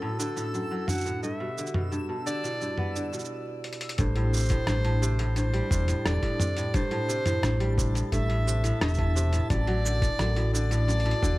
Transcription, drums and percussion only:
0.20 shaker medium
0.37 shaker soft
0.54 shaker soft
0.88 mid tom medium
0.88 shaker medium
0.92 shaker medium
0.94 shaker soft
0.98 shaker soft
1.00 shaker soft
1.03 shaker soft
1.06 shaker soft
1.23 shaker soft
1.58 shaker medium
1.67 shaker soft
1.74 mid tom medium
1.92 shaker soft
2.27 shaker medium
2.44 shaker soft
2.61 shaker soft
2.78 mid tom soft
2.96 shaker medium
3.13 shaker soft
3.19 shaker soft
3.25 shaker soft
3.64 closed hi-hat soft
3.73 closed hi-hat medium
3.81 closed hi-hat medium
3.89 closed hi-hat medium
3.98 kick loud
3.98 closed hi-hat medium
3.98 shaker soft
4.16 closed hi-hat soft
4.34 shaker medium
4.36 shaker medium
4.39 shaker medium
4.42 shaker soft
4.45 shaker soft
4.48 kick loud
4.48 closed hi-hat soft
4.48 shaker soft
4.51 shaker soft
4.67 cross-stick loud
4.67 closed hi-hat medium
4.67 shaker soft
4.85 closed hi-hat soft
5.03 shaker medium
5.19 closed hi-hat soft
5.36 closed hi-hat medium
5.36 shaker soft
5.54 closed hi-hat soft
5.71 kick loud
5.71 shaker medium
5.88 closed hi-hat soft
5.88 shaker soft
6.06 cross-stick loud
6.06 closed hi-hat medium
6.06 shaker soft
6.23 kick medium
6.23 closed hi-hat soft
6.40 mid tom medium
6.40 shaker medium
6.57 closed hi-hat soft
6.57 shaker soft
6.74 kick loud
6.74 closed hi-hat medium
6.74 shaker soft
6.91 closed hi-hat soft
7.09 shaker medium
7.26 closed hi-hat soft
7.26 mid tom medium
7.26 shaker soft
7.43 cross-stick loud
7.43 closed hi-hat medium
7.43 shaker soft
7.60 closed hi-hat soft
7.78 kick loud
7.78 shaker medium
7.95 closed hi-hat soft
7.95 shaker soft
8.12 kick medium
8.12 closed hi-hat medium
8.12 shaker soft
8.30 closed hi-hat soft
8.48 shaker medium
8.64 closed hi-hat soft
8.64 shaker soft
8.81 cross-stick loud
8.81 closed hi-hat medium
8.81 shaker soft
8.88 shaker soft
8.94 shaker soft
8.98 kick loud
8.98 closed hi-hat soft
9.17 shaker medium
9.33 closed hi-hat soft
9.33 shaker soft
9.50 kick loud
9.50 closed hi-hat medium
9.50 shaker soft
9.67 closed hi-hat soft
9.86 shaker medium
10.02 kick loud
10.02 closed hi-hat soft
10.02 shaker soft
10.19 cross-stick medium
10.19 closed hi-hat medium
10.19 shaker soft
10.36 closed hi-hat soft
10.55 shaker medium
10.71 closed hi-hat soft
10.71 shaker medium
10.88 closed hi-hat soft
10.88 shaker soft
11.00 closed hi-hat soft
11.06 closed hi-hat soft
11.11 closed hi-hat soft
11.23 kick loud
11.23 shaker medium

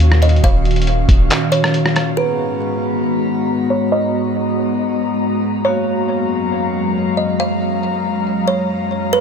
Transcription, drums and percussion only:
0.00 closed hi-hat medium
0.12 cross-stick loud
0.22 closed hi-hat medium
0.29 closed hi-hat medium
0.36 closed hi-hat soft
0.44 kick loud
0.44 closed hi-hat medium
0.65 closed hi-hat soft
0.71 closed hi-hat medium
0.76 closed hi-hat medium
0.82 closed hi-hat medium
0.87 closed hi-hat medium
1.09 kick loud
1.09 closed hi-hat medium
1.30 clap loud
1.30 closed hi-hat medium
1.52 closed hi-hat medium
1.64 cross-stick loud
1.74 closed hi-hat medium
1.86 cross-stick medium
1.96 cross-stick loud
1.96 closed hi-hat medium

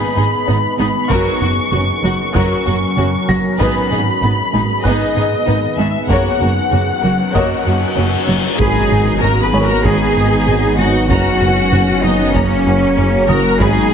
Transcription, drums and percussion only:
1.10 taiko medium
2.35 taiko medium
3.60 taiko medium
4.85 taiko medium
6.10 taiko medium
7.35 taiko medium
8.60 taiko medium
9.84 taiko medium
11.09 taiko medium
11.72 taiko low-mid medium
12.35 taiko medium
13.28 taiko low-mid soft
13.60 taiko medium

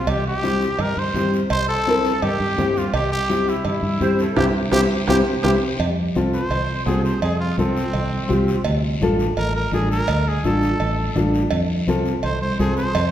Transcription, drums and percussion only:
0.07 cowbell loud
0.07 low conga medium
0.07 long guiro medium
0.43 high conga medium
0.43 short guiro medium
0.62 short guiro medium
0.79 cowbell medium
0.79 low conga medium
0.79 long guiro medium
1.15 high conga medium
1.15 low conga medium
1.15 short guiro medium
1.34 short guiro medium
1.50 cowbell loud
1.87 high conga medium
1.87 short guiro medium
2.05 short guiro medium
2.22 cowbell medium
2.22 low conga medium
2.22 long guiro medium
2.58 high conga medium
2.58 low conga medium
2.58 low timbale medium
2.58 short guiro medium
2.77 short guiro medium
2.94 cowbell loud
2.94 long guiro medium
3.30 high conga medium
3.30 short guiro medium
3.48 short guiro medium
3.65 cowbell medium
3.65 low conga medium
3.65 long guiro medium
3.84 high conga medium
4.01 high conga medium
4.01 low conga medium
4.01 short guiro medium
4.19 short guiro medium
4.36 high conga loud
4.36 high timbale loud
4.36 long guiro medium
4.71 high conga medium
4.71 high timbale medium
4.71 long guiro medium
5.07 high conga loud
5.07 high timbale loud
5.07 long guiro medium
5.44 high conga medium
5.44 high timbale medium
5.44 long guiro loud
5.79 cowbell loud
5.79 low conga medium
5.79 long guiro medium
6.15 high conga medium
6.15 short guiro medium
6.34 short guiro medium
6.51 cowbell medium
6.51 low conga medium
6.51 long guiro medium
6.86 high conga medium
6.86 low timbale medium
6.86 short guiro medium
7.05 short guiro medium
7.22 cowbell loud
7.22 long guiro medium
7.58 high conga medium
7.58 short guiro medium
7.77 short guiro medium
7.93 cowbell medium
7.93 low conga medium
7.93 long guiro medium
8.12 high conga medium
8.30 high conga medium
8.30 low conga medium
8.30 short guiro medium
8.48 short guiro medium
8.65 cowbell loud
8.65 long guiro medium
9.02 high conga medium
9.02 short guiro medium
9.19 short guiro medium
9.37 cowbell medium
9.37 low conga medium
9.37 long guiro medium
9.73 high conga medium
9.73 short guiro medium
9.92 short guiro medium
10.08 cowbell loud
10.08 long guiro medium
10.43 high conga medium
10.43 short guiro medium
10.62 short guiro medium
10.80 cowbell medium
10.80 low conga medium
10.80 long guiro medium
11.15 high conga medium
11.15 low conga medium
11.15 short guiro medium
11.34 short guiro medium
11.51 cowbell loud
11.51 low conga medium
11.51 long guiro medium
11.88 high conga medium
11.88 short guiro medium
12.05 short guiro medium
12.23 cowbell medium
12.23 low conga medium
12.23 long guiro medium
12.42 high conga medium
12.60 high conga medium
12.60 low conga medium
12.60 short guiro medium
12.77 short guiro medium
12.94 cowbell loud
12.94 long guiro medium

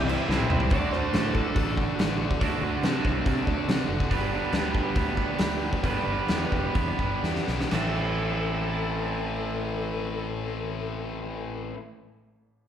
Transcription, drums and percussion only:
0.09 crash medium
0.31 snare medium
0.40 high tom medium
0.50 mid tom loud
0.60 floor tom medium
0.70 kick loud
0.70 open hi-hat soft
0.92 snare soft
1.14 snare loud
1.14 open hi-hat soft
1.35 kick medium
1.56 kick loud
1.56 open hi-hat soft
1.77 kick medium
1.99 snare loud
1.99 open hi-hat medium
2.31 kick medium
2.41 kick medium
2.41 open hi-hat soft
2.83 snare loud
2.83 open hi-hat soft
3.05 kick medium
3.26 kick medium
3.26 open hi-hat soft
3.47 kick medium
3.69 snare loud
3.69 open hi-hat soft
4.00 kick medium
4.11 kick medium
4.11 open hi-hat soft
4.53 snare medium
4.53 open hi-hat soft
4.75 kick medium
4.96 kick medium
4.96 open hi-hat soft
5.17 kick medium
5.39 snare loud
5.39 open hi-hat soft
5.73 kick medium
5.84 kick medium
5.84 open hi-hat soft
6.28 snare medium
6.28 open hi-hat soft
6.52 kick medium
6.75 kick medium
6.75 open hi-hat soft
6.99 kick medium
7.24 snare soft
7.36 snare medium
7.48 snare medium
7.60 snare medium
7.71 snare medium
7.71 crash medium

